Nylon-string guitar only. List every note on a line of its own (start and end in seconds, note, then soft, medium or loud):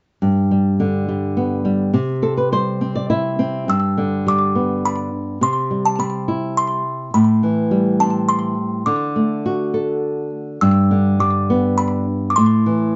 0.22 1.90 G2 medium
0.51 1.07 G3 soft
0.80 1.91 D3 soft
1.09 1.64 G3 soft
1.37 1.92 B3 soft
1.65 1.93 G3 soft
1.94 3.64 C3 medium
2.22 2.80 C4 soft
2.22 2.36 A4 medium
2.37 2.51 B4 medium
2.52 3.65 G3 soft
2.52 2.92 C5 medium
2.81 3.38 C4 soft
2.95 3.09 D5 medium
3.10 3.66 E4 medium
3.10 3.64 E5 medium
3.39 3.67 C4 medium
3.68 5.38 G2 medium
3.98 5.10 D3 soft
4.27 5.38 G3 soft
4.55 5.39 B3 soft
5.41 7.10 C3 medium
5.71 6.82 G3 soft
5.99 7.10 C4 soft
6.28 7.11 E4 soft
7.14 8.82 A2 medium
7.43 8.54 E3 soft
7.71 8.83 G3 medium
8.00 8.84 C4 soft
8.87 10.58 D3 medium
9.16 10.29 A3 soft
9.46 10.59 F#4 medium
9.74 10.59 A4 soft
10.62 12.33 G2 medium
10.91 12.05 D3 soft
11.20 12.33 G3 soft
11.50 12.35 B3 soft
12.38 12.96 A2 medium
12.66 12.96 E3 soft